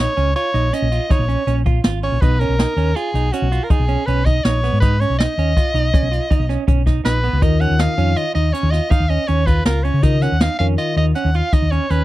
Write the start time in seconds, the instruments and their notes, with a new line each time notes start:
0.00 clean electric guitar D#4, soprano saxophone C#5
0.17 fingered electric bass C#2, clean electric guitar C#4, closed hi-hat
0.35 clean electric guitar F4, soprano saxophone C#5, closed hi-hat
0.54 fingered electric bass A#1, clean electric guitar D#4, closed hi-hat
0.73 clean electric guitar C#4, soprano saxophone D#5, snare, closed hi-hat
0.82 fingered electric bass A#1
0.92 clean electric guitar F4, closed hi-hat
1.10 clean electric guitar D#4, soprano saxophone C#5, kick, snare, closed hi-hat
1.19 fingered electric bass A#1
1.28 clean electric guitar C#4, closed hi-hat
1.47 fingered electric bass A#1, clean electric guitar C#4, closed hi-hat
1.66 clean electric guitar F4, kick, closed hi-hat
1.84 fingered electric bass G#1, clean electric guitar F4, snare, closed hi-hat
2.03 clean electric guitar C#4, soprano saxophone C#5, closed hi-hat
2.12 fingered electric bass A#1
2.21 fingered electric bass B1, clean electric guitar D#4, soprano saxophone B4, kick, closed hi-hat
2.40 clean electric guitar C#4, soprano saxophone A#4, closed hi-hat
2.49 fingered electric bass B1
2.59 clean electric guitar D#4, snare, closed hi-hat
2.76 fingered electric bass D#2, clean electric guitar C#4, closed hi-hat
2.96 clean electric guitar F4, soprano saxophone G#4, closed hi-hat
3.14 fingered electric bass B1, clean electric guitar D#4, closed hi-hat
3.32 clean electric guitar C#4, soprano saxophone F#4, closed hi-hat
3.42 fingered electric bass B1
3.52 clean electric guitar F4, closed hi-hat
3.64 soprano saxophone A#4
3.70 clean electric guitar D#4, soprano saxophone G#4, kick, closed hi-hat
3.79 fingered electric bass B1
3.88 clean electric guitar C#4, closed hi-hat
4.06 fingered electric bass B1, clean electric guitar C#4, soprano saxophone B4, closed hi-hat
4.26 clean electric guitar D#4, soprano saxophone D#5, kick, snare, closed hi-hat
4.44 fingered electric bass A#1, clean electric guitar D#4, soprano saxophone C#5, snare, closed hi-hat
4.64 clean electric guitar B3, snare, closed hi-hat
4.73 fingered electric bass G#2
4.81 clean electric guitar D#4, soprano saxophone B4, kick, closed hi-hat
5.00 clean electric guitar C#4, soprano saxophone C#5, closed hi-hat
5.10 fingered electric bass B1
5.19 clean electric guitar D#4, soprano saxophone D#5, snare, closed hi-hat
5.38 fingered electric bass D#2, clean electric guitar C#4, closed hi-hat
5.57 clean electric guitar F4, kick, closed hi-hat
5.74 fingered electric bass B1, clean electric guitar D#4, closed hi-hat
5.93 clean electric guitar C#4, kick, closed hi-hat
6.03 fingered electric bass B1
6.12 clean electric guitar F4, closed hi-hat
6.31 clean electric guitar D#4, kick, closed hi-hat
6.40 fingered electric bass B1
6.49 clean electric guitar C#4, snare, closed hi-hat
6.68 fingered electric bass B1, clean electric guitar C#4, kick, closed hi-hat
6.86 clean electric guitar D#4, kick, snare, closed hi-hat
7.05 fingered electric bass A#1, clean electric guitar D#4, soprano saxophone B4, snare, closed hi-hat
7.24 clean electric guitar B3, closed hi-hat
7.33 fingered electric bass C#2
7.42 fingered electric bass D#2, tine electric piano D#3 D#4 F4 A#4, clean electric guitar D#4, soprano saxophone D#5, kick, closed hi-hat
7.61 clean electric guitar C#4, soprano saxophone F#5, closed hi-hat
7.70 fingered electric bass D#2
7.79 clean electric guitar D#4, soprano saxophone F5, snare, closed hi-hat
7.97 fingered electric bass F2, tine electric piano D#3 D#4 F4 C#5, clean electric guitar C#4, closed hi-hat
8.16 clean electric guitar F4, soprano saxophone D#5, closed hi-hat
8.35 fingered electric bass D#2, clean electric guitar D#4, soprano saxophone D#5, closed hi-hat
8.53 clean electric guitar C#4, soprano saxophone C#5, closed hi-hat
8.63 fingered electric bass D#2
8.71 clean electric guitar F4, soprano saxophone D#5, snare, closed hi-hat
8.91 clean electric guitar D#4, soprano saxophone F5, kick, closed hi-hat
9.00 fingered electric bass D#2
9.10 clean electric guitar C#4, soprano saxophone D#5, closed hi-hat
9.28 fingered electric bass D#2, clean electric guitar C#4, soprano saxophone C#5, closed hi-hat
9.47 clean electric guitar F4, soprano saxophone B4, kick, snare, closed hi-hat
9.65 fingered electric bass C#2, clean electric guitar F4, soprano saxophone A#4, snare, closed hi-hat
9.84 clean electric guitar C#4, soprano saxophone C#5, closed hi-hat
9.94 fingered electric bass C#3
10.03 tine electric piano D#3 D#4 F4 A#4, clean electric guitar D#4, soprano saxophone D#5, kick, closed hi-hat
10.22 clean electric guitar C#4, soprano saxophone F#5, snare, closed hi-hat
10.32 fingered electric bass D#2
10.40 clean electric guitar D#4, soprano saxophone F5, snare, closed hi-hat
10.59 fingered electric bass F2, tine electric piano D#3 D#4 F4 A#4, clean electric guitar C#4, soprano saxophone F5, snare, closed hi-hat
10.78 clean electric guitar F4, soprano saxophone D#5, closed hi-hat
10.96 fingered electric bass D#2, clean electric guitar D#4, soprano saxophone D#5, closed hi-hat
11.15 clean electric guitar C#4, soprano saxophone F#5, closed hi-hat
11.25 fingered electric bass D#2
11.34 clean electric guitar F4, soprano saxophone F5, closed hi-hat
11.52 clean electric guitar D#4, soprano saxophone D#5, kick, closed hi-hat
11.62 fingered electric bass D#2
11.72 clean electric guitar C#4, soprano saxophone C#5, closed hi-hat
11.90 fingered electric bass D#2, clean electric guitar C#4, soprano saxophone B4, snare, closed hi-hat